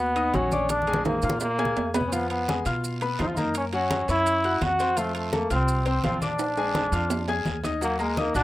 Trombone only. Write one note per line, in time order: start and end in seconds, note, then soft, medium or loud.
0.00 0.36 B3 loud
0.35 0.72 C#4 loud
0.71 1.05 D4 loud
1.06 1.39 A#3 loud
1.41 1.91 A#3 loud
2.08 2.15 C#4 medium
2.13 2.30 B3 loud
2.31 2.64 B3 medium
3.21 3.29 D#4 loud
3.28 3.37 F4 medium
3.35 3.56 D#4 medium
3.57 3.65 C#4 loud
3.75 4.07 C#4 loud
4.10 4.64 E4 loud
4.63 5.00 F#4 loud
4.98 5.16 A3 loud
5.16 5.35 A3 medium
5.34 5.51 A#3 medium
5.52 5.84 C4 loud
5.88 6.03 C4 medium
6.06 6.21 C4 medium
6.23 7.43 D4 loud
7.82 7.99 A#3 loud
8.01 8.19 G#3 medium
8.18 8.35 A#3 medium
8.36 8.43 D4 loud